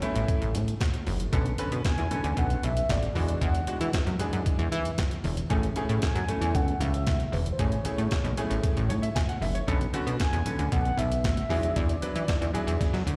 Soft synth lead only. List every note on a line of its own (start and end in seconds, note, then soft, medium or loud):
0.00 0.29 C#5 loud
1.86 2.40 G#5 loud
2.38 2.66 F#5 loud
2.64 2.92 E5 loud
2.91 3.42 D5 medium
3.43 3.91 F#5 medium
6.04 6.57 G#5 loud
6.55 6.83 F#5 loud
6.82 7.35 E5 loud
7.33 7.52 B4 medium
7.52 7.62 C5 medium
7.60 8.64 C#5 loud
10.21 10.69 G#5 loud
10.72 11.00 F#5 loud
10.98 11.24 E5 loud
11.24 11.78 E5 medium
11.76 13.16 D5 loud